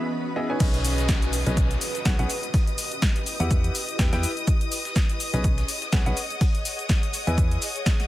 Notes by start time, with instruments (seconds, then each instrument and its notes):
Already playing: ambient pad E3 C#4 F#4 B4 D#5, violin section B4 B5, swell
0.02 cabasa
0.12 cabasa
0.26 cabasa
0.36 upright piano B3 E4 G#4 D#5, cabasa
0.50 upright piano D#4 B4 C#5 G#5, cabasa
0.60 fm bass B1, upright piano C#4 G#4 B4 D#5, violin section D#5 D#6, kick, closed hi-hat, crash, downlifter, cabasa, shaker
0.74 closed hi-hat, cabasa
0.84 open hi-hat, cabasa, shaker
0.98 snare, closed hi-hat, cabasa
1.09 kick, snare, closed hi-hat, cabasa, shaker
1.22 closed hi-hat, cabasa
1.33 open hi-hat, cabasa, shaker
1.46 fm bass B1, upright piano C#4 G#4 B4 D#5, snare, closed hi-hat, cabasa
1.57 kick, closed hi-hat, cabasa, shaker
1.71 snare, closed hi-hat, cabasa
1.81 open hi-hat, cabasa, shaker
1.95 snare, closed hi-hat, cabasa
2.05 fm bass B1, upright piano C#4 G#4 B4 F#5, kick, snare, closed hi-hat, cabasa, shaker
2.19 fm bass B1, upright piano C#4 G#4 B4 F#5, closed hi-hat, cabasa
2.30 ambient pad G4, open hi-hat, cabasa, shaker
2.43 closed hi-hat, cabasa
2.54 kick, closed hi-hat, open hi-hat, cabasa
2.67 closed hi-hat, cabasa
2.78 open hi-hat, cabasa, shaker
2.92 closed hi-hat, cabasa
2.99 ambient pad E4, kick, snare, closed hi-hat, cabasa, shaker
3.16 closed hi-hat, cabasa
3.26 open hi-hat, cabasa, shaker
3.40 fm bass E2, upright piano E4 G4 B4 F#5, closed hi-hat, cabasa
3.51 kick, closed hi-hat, cabasa, shaker
3.64 closed hi-hat, cabasa
3.75 open hi-hat, cabasa, shaker
3.89 closed hi-hat, cabasa
3.99 fm bass E2, upright piano E4 G4 B4 G5, kick, snare, closed hi-hat, cabasa, shaker
4.13 fm bass E2, upright piano E4 G4 B4 G5, snare, closed hi-hat, cabasa
4.23 open hi-hat, cabasa, shaker
4.37 closed hi-hat, cabasa
4.47 ambient pad D#5, kick, closed hi-hat, cabasa, shaker
4.61 closed hi-hat, cabasa
4.66 ambient pad C#5
4.72 open hi-hat, cabasa, shaker
4.85 snare, closed hi-hat, cabasa
4.96 kick, snare, closed hi-hat, cabasa, shaker
5.01 ambient pad G#4
5.09 closed hi-hat, cabasa
5.20 open hi-hat, cabasa, shaker
5.24 ambient pad F#5
5.34 fm bass B1, upright piano C#4 G#4 B4 D#5, snare, closed hi-hat, cabasa
5.44 kick, closed hi-hat, cabasa, shaker
5.58 snare, closed hi-hat, cabasa
5.68 open hi-hat, cabasa, shaker
5.82 snare, closed hi-hat, cabasa
5.93 fm bass B1, upright piano C#4 G#4 B4 F#5, kick, snare, closed hi-hat, cabasa, shaker
6.06 fm bass B1, upright piano C#4 G#4 B4 F#5, closed hi-hat, cabasa
6.17 open hi-hat, cabasa, shaker
6.30 closed hi-hat, cabasa
6.41 kick, closed hi-hat, open hi-hat, cabasa
6.55 closed hi-hat, cabasa
6.65 open hi-hat, cabasa, shaker
6.79 closed hi-hat, cabasa
6.89 kick, snare, closed hi-hat, cabasa, shaker
7.03 closed hi-hat, cabasa
7.14 open hi-hat, cabasa, shaker
7.27 fm bass E2, upright piano E4 B4 D#5 G#5, closed hi-hat, cabasa
7.38 kick, closed hi-hat, cabasa, shaker
7.51 closed hi-hat, cabasa
7.62 open hi-hat, cabasa, shaker
7.76 closed hi-hat, cabasa
7.86 kick, snare, closed hi-hat, cabasa, shaker
8.00 snare, closed hi-hat, cabasa